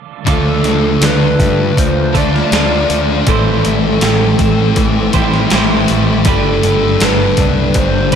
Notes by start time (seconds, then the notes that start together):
0.27 D2 D3 F3 A3 D4 F4 A4, kick, open hi-hat
0.32 A4
0.64 D2, snare, open hi-hat
1.01 D2 D4, snare, open hi-hat
1.05 B4
1.39 G2 A3, kick, open hi-hat
1.76 D2 F3 C5, kick, open hi-hat
2.14 D3 A3 D4 F4 A4 D5, kick, open hi-hat
2.36 snare
2.52 D2 D3 F3 A3 D4 F4 A4, snare, open hi-hat
2.90 D2 F3, open hi-hat
3.27 A1 A2 E3 G3 A3 C4 E4 A4, kick, open hi-hat
3.31 C5
3.65 A1, open hi-hat
4.01 A1 G4, snare, open hi-hat
4.39 A1 C4, kick, open hi-hat
4.76 A1 E3, kick, open hi-hat
5.13 A1 G3 A3 C4 E4 C5, kick, open hi-hat
5.17 A2 E3
5.34 snare
5.50 A1 A2 E3 G3 A3, snare, open hi-hat
5.55 C4 E4 C5
5.88 A1 A3, open hi-hat
6.25 G1 G2 D3 G3 A3 D4 G4 B4, kick, open hi-hat
6.29 A4
6.63 G1, open hi-hat
7.00 G1 A4, snare, open hi-hat
7.05 B4
7.37 C2 D4, kick, open hi-hat
7.74 G1 G3 C5, kick, open hi-hat
8.12 open hi-hat